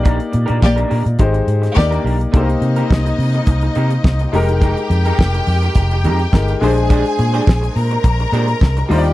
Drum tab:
HH |xxxx-xoxxxxx-xox|xxxx-xoxxxxx-xox|xxxx-xoxxxxx-xox|xxxx-xoxxxxx-xox|
SD |----o------oo---|----o-------o---|----o-------o---|----o-------o---|
BD |o---o---o---o---|o---o---o---o---|o---o---o---o---|o---o---o---o---|